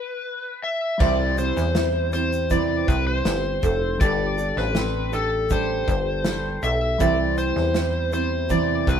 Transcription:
0.00 0.59 B4 medium
0.64 1.02 E5 medium
0.98 1.53 C2 loud
0.98 1.38 C3 medium
0.98 1.38 E3 medium
0.98 3.95 G3 medium
0.98 1.38 G3 medium
0.98 1.37 C4 medium
0.98 3.96 E4 medium
0.98 1.37 E4 medium
0.98 1.36 C5 medium
0.98 1.35 D5 loud
0.98 1.18 E5 loud
0.98 kick loud
0.98 crash medium
1.02 3.97 C5 medium
1.37 1.73 G3 soft
1.37 1.74 C4 soft
1.37 1.75 E4 soft
1.37 1.75 C5 soft
1.37 2.12 C5 medium
1.37 shaker medium
1.57 2.84 E2 medium
1.57 1.74 C5 medium
1.57 snare soft
1.57 shaker medium
1.75 2.13 G3 soft
1.75 2.13 C4 medium
1.75 2.12 E4 medium
1.75 2.11 C5 medium
1.75 2.12 C5 medium
1.75 snare loud
1.75 shaker medium
2.13 2.50 G3 soft
2.13 2.50 C4 medium
2.13 2.50 E4 medium
2.13 2.50 C5 medium
2.13 2.52 C5 medium
2.13 2.31 D5 medium
2.13 shaker soft
2.33 shaker soft
2.50 3.25 C3 medium
2.50 3.26 E3 medium
2.50 3.25 G3 medium
2.50 3.25 C4 medium
2.50 3.26 E4 medium
2.50 2.86 C5 medium
2.50 3.26 C5 medium
2.50 2.89 D5 loud
2.50 kick medium
2.50 shaker medium
2.88 3.23 C2 loud
2.88 3.07 B4 loud
2.88 3.06 C5 medium
2.88 kick medium
2.88 shaker medium
3.07 4.03 C5 loud
3.25 3.60 G1 medium
3.25 4.00 G3 medium
3.25 4.00 C4 medium
3.25 4.01 E4 medium
3.25 4.01 C5 medium
3.25 snare loud
3.25 shaker medium
3.63 3.97 F1 medium
3.63 3.81 A4 medium
3.63 kick medium
3.63 shaker medium
3.98 4.53 G1 loud
3.98 6.95 G3 medium
3.98 4.38 G3 medium
3.98 6.96 D4 medium
3.98 4.38 D4 medium
3.98 4.37 G4 medium
3.98 4.36 A4 medium
3.98 4.18 D5 loud
3.98 4.59 D5 medium
3.98 kick loud
3.98 shaker medium
4.02 6.97 A4 medium
4.37 4.75 D4 soft
4.37 4.75 G4 soft
4.37 4.75 A4 soft
4.37 shaker medium
4.57 5.84 A1 medium
4.57 5.15 B4 loud
4.57 4.75 C5 medium
4.57 snare soft
4.75 5.13 G3 medium
4.75 5.11 C4 medium
4.75 5.13 D4 medium
4.75 5.12 G4 medium
4.75 5.11 A4 medium
4.75 snare loud
4.75 shaker medium
5.12 5.49 D4 soft
5.12 5.50 G4 medium
5.12 5.50 A4 medium
5.12 5.52 A4 medium
5.12 5.31 D5 medium
5.12 shaker soft
5.50 6.24 G3 medium
5.50 6.25 D4 medium
5.50 6.26 G4 medium
5.50 6.25 A4 loud
5.50 5.86 C5 medium
5.50 6.67 C5 loud
5.50 kick medium
5.50 shaker medium
5.88 6.59 G1 loud
5.88 6.06 C5 medium
5.88 kick medium
5.88 shaker soft
6.25 7.00 G3 medium
6.25 7.00 D4 medium
6.25 7.00 G4 medium
6.25 7.00 A4 medium
6.25 snare loud
6.25 shaker medium
6.63 6.97 B1 medium
6.63 6.81 A4 medium
6.63 7.02 E5 loud
6.63 shaker medium
6.98 7.52 C2 loud
6.98 7.75 C3 medium
6.98 7.75 E3 medium
6.98 9.00 G3 medium
6.98 7.74 G3 medium
6.98 7.74 C4 medium
6.98 9.00 E4 medium
6.98 7.75 E4 medium
6.98 7.75 C5 loud
6.98 7.38 D5 medium
6.98 7.18 E5 medium
6.98 kick loud
6.98 shaker medium
7.02 9.00 C5 medium
7.38 8.12 C5 loud
7.38 shaker medium
7.56 8.83 E2 medium
7.56 7.74 C5 medium
7.56 snare soft
7.74 8.12 G3 medium
7.74 8.12 C4 medium
7.74 8.11 E4 medium
7.74 8.11 C5 medium
7.74 8.10 C5 medium
7.74 snare loud
7.74 shaker medium
8.12 8.48 G3 soft
8.12 8.49 C4 medium
8.12 8.49 E4 medium
8.12 8.49 C5 medium
8.12 8.52 C5 medium
8.12 8.30 D5 medium
8.12 shaker soft
8.49 9.00 C3 medium
8.49 9.00 E3 medium
8.49 9.00 G3 medium
8.49 9.00 C4 medium
8.49 9.00 E4 medium
8.49 8.85 C5 medium
8.49 9.00 C5 medium
8.49 8.89 D5 loud
8.49 kick medium
8.49 shaker medium
8.87 9.00 C2 loud
8.87 9.00 B4 medium
8.87 9.00 C5 medium
8.87 kick medium
8.87 shaker medium

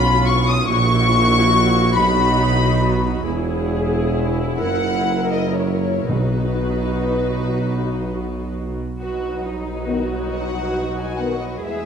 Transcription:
0.00 0.65 B1 medium
0.00 0.65 B2 medium
0.00 0.65 C#4 medium
0.00 0.65 F4 medium
0.00 0.27 B5 loud
0.00 0.28 B5 loud
0.26 0.47 C#6 medium
0.26 0.48 C#6 loud
0.48 0.69 D#6 medium
0.48 0.69 D#6 loud
0.69 1.94 A#1 medium
0.69 1.98 A#1 medium
0.69 1.94 A#2 medium
0.69 1.92 E4 medium
0.69 3.20 F#4 medium
0.69 1.94 C#6 loud
1.95 3.07 B1 medium
1.95 3.24 B1 medium
1.95 3.24 B2 medium
1.95 3.20 D#4 medium
1.95 3.23 B5 medium
1.95 3.23 B5 loud
3.23 4.63 E1 medium
3.23 4.58 E1 medium
3.23 4.57 E2 medium
3.23 6.05 E4 medium
3.23 4.57 G#4 medium
4.59 6.09 F#1 medium
4.59 6.08 F#1 medium
4.59 6.08 F#2 medium
4.59 6.05 A#4 medium
4.59 5.28 F#5 medium
5.32 5.57 D#5 medium
5.55 6.06 C#5 medium
5.55 6.08 C#5 medium
6.07 8.77 B1 medium
6.07 8.77 B2 medium
6.07 7.56 B2 medium
6.07 8.77 D#4 medium
6.07 8.77 F#4 medium
6.07 8.55 B4 medium
9.01 11.58 B1 medium
9.01 11.59 F#3 soft
9.01 11.59 D#4 soft
9.01 9.42 F#4 soft
9.01 11.85 B4 soft
9.45 9.88 D#4 soft
9.87 10.03 D#3 soft
9.87 10.02 B3 soft
9.87 11.62 F#4 soft
10.32 10.93 F#5 medium
10.99 11.20 G#5 medium
11.19 11.35 D#3 soft
11.19 11.35 B3 soft
11.19 11.40 F#5 medium
11.42 11.63 D#5 medium
11.62 11.85 E2 soft
11.62 11.85 G#3 soft
11.62 11.85 E4 soft
11.62 11.85 G#4 medium
11.62 11.85 E5 medium

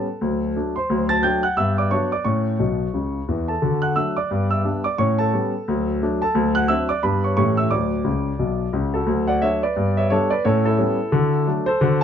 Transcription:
0.00 0.51 A4 soft
0.00 0.55 A5 medium
0.21 0.50 D2 medium
0.21 0.41 F#3 soft
0.56 0.74 F#3 soft
0.56 0.75 A3 soft
0.56 0.75 D4 soft
0.76 1.08 C5 medium
0.76 1.10 C6 medium
0.90 1.18 D2 medium
0.90 1.10 F#3 soft
1.09 1.22 A5 medium
1.09 1.23 A6 medium
1.23 1.42 F#3 medium
1.23 1.42 A3 soft
1.23 1.43 D4 soft
1.23 1.43 G5 medium
1.23 1.44 G6 medium
1.43 1.57 F#5 medium
1.43 1.57 F#6 medium
1.57 1.86 G2 medium
1.57 1.77 B3 soft
1.57 1.77 E5 medium
1.57 1.78 E6 medium
1.78 1.91 D5 medium
1.78 1.92 D6 medium
1.91 2.10 F#3 soft
1.91 2.10 B3 soft
1.91 2.11 D4 soft
1.91 2.11 C#5 medium
1.91 2.12 C#6 medium
2.12 2.25 D5 medium
2.12 2.26 D6 medium
2.25 2.54 A2 medium
2.25 2.45 C#4 soft
2.25 3.45 C#5 soft
2.25 3.48 C#6 medium
2.59 2.85 B1 medium
2.59 2.85 B2 medium
2.94 3.19 C#2 soft
2.94 3.19 C#3 soft
3.28 3.54 E2 medium
3.28 3.54 E3 medium
3.48 3.81 A4 soft
3.48 3.83 A5 medium
3.62 3.91 D3 medium
3.62 3.82 F#4 soft
3.82 3.96 F#5 medium
3.82 3.96 F#6 medium
3.96 4.15 F#3 soft
3.96 4.15 A3 soft
3.96 4.15 D4 soft
3.96 4.16 E5 medium
3.96 4.17 E6 medium
4.17 4.49 D5 medium
4.17 4.51 D6 medium
4.31 4.60 G2 medium
4.31 4.51 B3 soft
4.51 4.84 E5 soft
4.51 4.85 E6 medium
4.65 4.83 G3 soft
4.65 4.84 B3 soft
4.65 4.84 D4 soft
4.84 4.98 D5 medium
4.84 4.98 D6 medium
4.98 5.28 A2 medium
4.98 5.19 C#4 soft
4.98 5.18 C#5 medium
4.98 5.19 C#6 medium
5.18 5.97 A4 medium
5.18 6.01 A5 medium
5.33 5.52 G3 soft
5.33 5.52 B3 soft
5.33 5.53 C#4 soft
5.68 5.97 D2 medium
5.68 5.88 F#3 medium
6.02 6.21 F#3 medium
6.02 6.21 A3 medium
6.02 6.21 D4 medium
6.22 6.54 A4 medium
6.22 6.56 A5 medium
6.35 6.64 D2 medium
6.35 6.55 F#3 soft
6.55 6.69 F#5 medium
6.55 6.69 F#6 loud
6.68 6.88 F#3 soft
6.68 6.88 C4 soft
6.68 6.88 D4 soft
6.68 6.89 E5 medium
6.68 6.90 E6 medium
6.89 7.03 D5 medium
6.89 7.03 D6 medium
7.03 7.32 G2 medium
7.03 7.22 G3 soft
7.03 7.24 B3 soft
7.03 7.23 D4 soft
7.03 7.23 B4 medium
7.03 7.24 B5 medium
7.24 7.36 C#5 medium
7.24 7.35 C#6 medium
7.37 7.66 A2 medium
7.37 7.56 E3 soft
7.37 7.56 A3 soft
7.37 7.57 C#4 soft
7.37 7.57 G4 soft
7.37 7.57 C#5 medium
7.37 7.58 C#6 medium
7.57 7.71 E5 medium
7.57 7.71 E6 medium
7.71 8.00 D2 medium
7.71 7.91 F#3 soft
7.71 8.70 D5 medium
7.71 8.73 D6 medium
8.04 8.30 C#2 medium
8.04 8.31 C#3 medium
8.39 8.65 B1 medium
8.39 8.65 B2 medium
8.73 8.99 C#2 medium
8.73 8.99 C#3 medium
8.94 9.26 F#4 soft
8.94 9.28 A4 medium
9.07 9.36 D2 medium
9.07 9.27 F#3 soft
9.28 9.41 D5 medium
9.28 9.42 F#5 medium
9.42 9.61 F#3 soft
9.42 9.61 A3 soft
9.42 9.62 D4 soft
9.42 9.62 C#5 medium
9.42 9.63 E5 medium
9.63 9.95 B4 medium
9.63 9.97 D5 medium
9.76 10.05 G2 medium
9.76 9.97 B3 soft
9.97 10.09 C#5 medium
9.97 10.10 E5 medium
10.10 10.30 G3 medium
10.10 10.30 B3 soft
10.10 10.30 D4 medium
10.10 10.30 A4 medium
10.10 10.31 C#5 medium
10.30 10.44 B4 medium
10.30 10.44 D5 medium
10.45 10.74 A2 medium
10.45 10.65 C#4 medium
10.45 10.64 A4 medium
10.45 10.65 C#5 medium
10.66 11.43 E4 medium
10.66 11.47 A4 medium
10.78 10.97 G3 soft
10.78 10.97 B3 medium
10.78 10.97 C#4 medium
11.12 11.41 D3 medium
11.12 11.33 F#4 medium
11.47 11.65 F#3 medium
11.47 11.66 A3 medium
11.47 11.66 D4 medium
11.66 11.99 A4 medium
11.66 12.01 C5 medium
11.81 12.04 D3 medium
11.81 12.01 F#4 medium

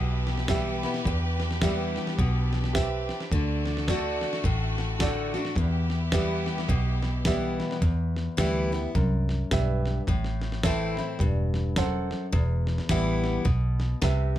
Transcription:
0.00 0.84 B1 medium
0.00 1.01 B2 medium
0.00 1.04 E4 medium
0.00 3.27 G4 medium
0.00 3.27 B4 medium
0.27 snare soft
0.38 snare soft
0.48 0.81 E3 medium
0.48 0.82 G3 medium
0.48 0.82 B3 medium
0.48 0.82 E4 medium
0.48 0.97 G4 medium
0.48 0.97 B4 medium
0.48 0.97 E5 loud
0.48 kick medium
0.48 snare loud
0.48 hi-hat pedal medium
0.83 1.06 B3 soft
0.83 1.05 E4 medium
0.83 snare soft
0.94 snare soft
1.05 1.97 E2 medium
1.05 2.14 E2 medium
1.05 5.53 D4 medium
1.05 kick loud
1.05 snare soft
1.40 snare soft
1.51 snare soft
1.61 2.16 E3 medium
1.61 2.17 G3 medium
1.61 2.17 B3 medium
1.61 2.18 E4 medium
1.61 2.10 G4 medium
1.61 2.10 B4 medium
1.61 2.10 E5 medium
1.61 kick medium
1.61 snare loud
1.61 hi-hat pedal medium
1.96 snare soft
2.07 snare soft
2.19 3.10 B1 medium
2.19 2.73 B2 medium
2.19 kick loud
2.19 snare soft
2.53 snare soft
2.64 snare soft
2.73 3.30 C4 medium
2.73 3.22 G4 medium
2.73 3.22 B4 medium
2.73 3.22 E5 medium
2.73 kick medium
2.73 snare loud
2.73 hi-hat pedal medium
3.09 snare soft
3.20 snare soft
3.31 4.23 D2 medium
3.31 3.87 D3 medium
3.31 5.55 A3 medium
3.31 5.54 F#4 medium
3.31 kick medium
3.31 snare soft
3.66 snare soft
3.77 snare soft
3.88 4.42 D3 medium
3.88 4.42 A3 medium
3.88 4.43 D4 medium
3.88 4.35 F#4 medium
3.88 4.43 F#4 medium
3.88 4.35 A4 medium
3.88 4.36 D5 medium
3.88 kick medium
3.88 snare loud
3.88 hi-hat pedal medium
4.21 snare soft
4.33 snare soft
4.44 5.35 A1 medium
4.44 5.52 A2 medium
4.44 kick medium
4.44 snare soft
4.78 snare soft
4.99 5.32 D3 medium
4.99 5.33 A3 medium
4.99 5.33 D4 medium
4.99 5.47 F#4 medium
4.99 5.33 F#4 medium
4.99 5.48 A4 medium
4.99 5.48 D5 medium
4.99 kick medium
4.99 snare loud
4.99 hi-hat pedal medium
5.34 5.57 D4 soft
5.34 5.56 F#4 medium
5.34 snare soft
5.45 snare soft
5.56 6.48 E2 medium
5.56 6.65 E2 medium
5.56 7.80 B3 medium
5.56 7.80 E4 medium
5.56 7.80 G4 medium
5.56 kick loud
5.56 snare soft
5.90 snare soft
6.12 6.67 E3 medium
6.12 6.68 G3 medium
6.12 6.68 B3 medium
6.12 6.68 E4 medium
6.12 6.60 G4 medium
6.12 6.60 B4 medium
6.12 6.61 E5 medium
6.12 kick medium
6.12 snare loud
6.12 hi-hat pedal loud
6.46 snare soft
6.58 snare soft
6.69 7.60 B1 medium
6.69 7.77 B2 medium
6.69 kick medium
6.69 snare soft
7.03 snare soft
7.25 7.79 E3 medium
7.25 7.80 G3 medium
7.25 7.80 B3 medium
7.25 7.81 E4 medium
7.25 7.73 G4 medium
7.25 7.73 B4 medium
7.25 7.74 E5 medium
7.25 kick medium
7.25 snare loud
7.25 hi-hat pedal medium
7.60 snare soft
7.71 snare soft
7.82 8.27 E2 medium
7.82 kick loud
7.82 snare soft
8.17 snare soft
8.37 8.86 D2 medium
8.37 8.70 E3 medium
8.37 8.71 G3 medium
8.37 8.71 B3 medium
8.37 8.71 E4 loud
8.37 8.86 G4 medium
8.37 8.86 B4 medium
8.37 8.87 E5 loud
8.37 kick loud
8.37 snare loud
8.37 hi-hat pedal medium
8.72 8.95 B3 soft
8.72 8.94 E4 medium
8.72 snare soft
8.95 9.43 C2 medium
8.95 9.49 F#2 medium
8.95 kick medium
8.95 snare soft
9.29 snare soft
9.51 9.99 B1 medium
9.51 10.05 G2 medium
9.51 9.99 G4 medium
9.51 9.99 B4 medium
9.51 10.00 E5 loud
9.51 kick medium
9.51 snare loud
9.51 hi-hat pedal medium
9.86 snare soft
10.07 10.99 A1 medium
10.07 11.16 A2 medium
10.07 kick loud
10.07 snare soft
10.25 snare soft
10.42 snare soft
10.52 snare soft
10.63 10.96 E3 medium
10.63 10.97 A3 medium
10.63 10.97 C4 loud
10.63 10.97 E4 medium
10.63 11.11 A4 medium
10.63 11.12 C5 medium
10.63 11.12 E5 medium
10.63 kick medium
10.63 snare loud
10.63 hi-hat pedal loud
10.97 11.20 C4 soft
10.97 11.20 E4 soft
10.97 snare soft
11.19 12.12 E1 medium
11.19 11.75 G2 medium
11.19 kick loud
11.19 snare soft
11.54 snare soft
11.76 12.31 F#2 medium
11.76 12.24 A4 medium
11.76 12.25 C5 medium
11.76 12.25 F#5 loud
11.76 kick medium
11.76 snare loud
11.76 hi-hat pedal medium
12.11 snare soft
12.32 12.79 E1 medium
12.32 13.41 E2 medium
12.32 kick loud
12.32 snare soft
12.67 snare soft
12.78 snare soft
12.89 13.37 A1 medium
12.89 13.43 E3 medium
12.89 13.44 G3 medium
12.89 13.44 B3 medium
12.89 13.44 E4 medium
12.89 13.37 G4 medium
12.89 13.38 B4 medium
12.89 13.38 E5 medium
12.89 kick medium
12.89 snare loud
12.89 hi-hat pedal loud
13.24 snare soft
13.45 13.94 B1 medium
13.45 13.99 B2 medium
13.45 kick loud
13.45 snare soft
13.80 snare soft
14.02 14.39 C2 medium
14.02 14.39 C3 medium
14.02 14.39 G4 medium
14.02 14.39 B4 medium
14.02 14.39 E5 medium
14.02 kick medium
14.02 snare loud
14.02 hi-hat pedal medium

